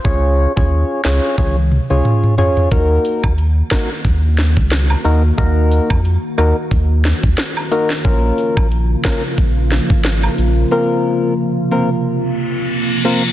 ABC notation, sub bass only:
X:1
M:4/4
L:1/16
Q:"Swing 16ths" 1/4=90
K:Ebdor
V:1 name="Sub bass" clef=bass
D,,3 E,,2 z D,, z D,,3 D,, z4 | E,,2 z E,,3 z2 E,,3 D,,3 E,,2 | E,,3 F,,2 z E,, z E,,3 E,, z4 | B,,,2 z B,,,3 z2 B,,,3 A,,,3 B,,,2 |
z16 |]